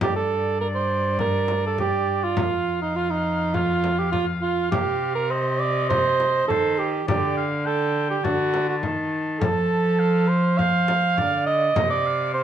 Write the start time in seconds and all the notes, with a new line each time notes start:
0.01 G2 G4 D5, frame drum
0.16 A4
0.61 A#4
0.75 C5
1.19 A#4, frame drum
1.48 frame drum
1.67 A4
1.78 G4, frame drum
2.24 F4
2.37 F2 F5, frame drum
2.82 D#4
2.96 F4
3.10 D#4
3.54 F4, frame drum
3.84 frame drum
3.99 G4
4.12 F4, frame drum
4.42 F4
4.72 C3 G4, frame drum
5.15 A#4
5.31 C5 D#5
5.59 D5
5.90 C5, frame drum
6.20 frame drum
6.48 D#3 A4 C5, frame drum
6.79 G4
7.07 D3 G4 D5, frame drum
7.37 F5
7.65 A4 G5
8.11 G4
8.24 D3 F#4 A5, frame drum
8.54 frame drum
8.69 F#4
8.83 D#3, frame drum
9.40 F3 A4 A5, frame drum
9.99 F5
10.29 C5
10.58 C5 F5, frame drum
10.88 frame drum
11.18 D3 D5, frame drum
11.47 D#5
11.76 C3 D#5, frame drum
11.90 D5
12.06 F5
12.34 C5